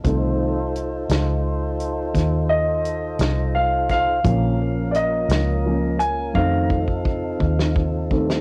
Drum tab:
HH |x---x-x---x-x---x-x---x-|x---x-x---x-------------|
SD |------o-----o-----o---o-|------o------------o---o|
BD |o-----------o---------o-|o-----------o-ooo-o-o-o-|